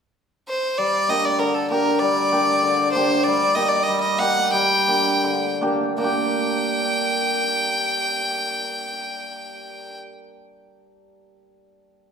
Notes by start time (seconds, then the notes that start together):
0.48 C5
0.78 G3 D5
1.09 A#3 D4 G4 D#5
1.25 D5
1.39 D3 A#4
1.54 A4
1.70 A#3 D4 G4 A#4
1.99 G3 D5
2.31 A#3 D4 G4
2.63 D3
2.92 A#3 D4 C5
2.97 G4
3.24 G3 D5
3.55 A#3 D#4 G4 D#5
3.69 D5
3.83 D#5
3.88 G3
4.01 D#5
4.19 A#3 D#4 G4 F#5
4.53 G3 G5
4.87 A#3 D4 G4
5.24 D3
5.61 A#3 D4 G4
5.98 A#3 D4 G5
6.04 G4